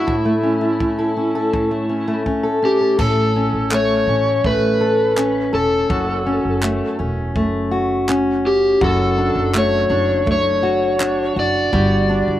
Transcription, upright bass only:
2.99 A1
3.53 A1
4.07 A1
4.44 A1
5.54 E1
5.90 F#1
6.45 F#1
7.00 E1
7.35 F#1
8.81 F#1
9.35 F#1
9.90 F#1
10.27 F#1
11.36 F#1
11.73 G1
12.28 G1

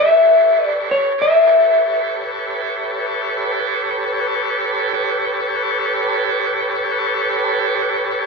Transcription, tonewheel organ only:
Already playing: G4 A4 B4 C#5
1.18 G#4 A#4 C5 D5
1.47 G4 A4 B4 C#5
4.93 G4 A4 B4 C#5

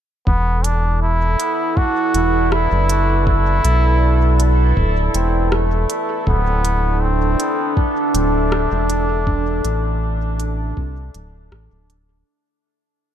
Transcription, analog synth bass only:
0.27 E1
2.14 E1
2.72 F#1
3.64 B1
4.77 D1
5.14 E1
6.27 D1
8.14 D1
8.72 E1
9.65 A1
10.77 C2
11.15 D1
11.52 A1
11.72 D1

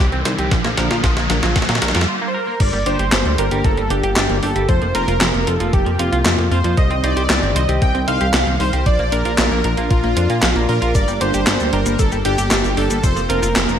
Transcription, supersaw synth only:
2.27 C5
2.34 A#4
2.60 D5
2.86 C5
3.38 A#4
3.64 A4
3.90 G4
4.42 A4
4.68 C5
4.95 A#4
5.47 A4
5.73 G4
5.99 F4
6.51 C5
6.78 D#5
7.04 D5
7.56 D#5
7.82 G5
8.08 F5
8.60 C5
8.86 D5
9.12 A#4
9.90 F4
10.68 A#4
10.95 D5
11.21 C5
11.73 A#4
11.99 A4
12.25 G4
12.77 A4
13.03 C5
13.30 A#4

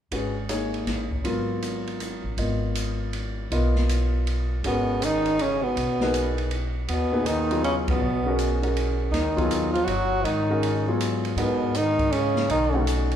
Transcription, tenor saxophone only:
4.68 B3
5.04 D#4
5.42 C#4
5.63 B3
6.89 B3
7.26 D#4
7.64 C#4
7.90 B3
9.12 D#4
9.73 F4
9.85 F#4
10.25 D#4
11.38 B3
11.76 D#4
12.12 C#4
12.51 D#4

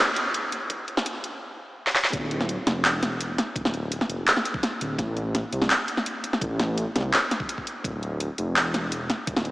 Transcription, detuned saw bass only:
2.13 D1
2.66 F1
2.84 E1
3.56 D1
4.09 F1
4.81 D1
4.99 A1
5.52 C2
6.41 A1
6.96 C2
7.85 D1
8.38 F1
8.56 E1
9.27 D1

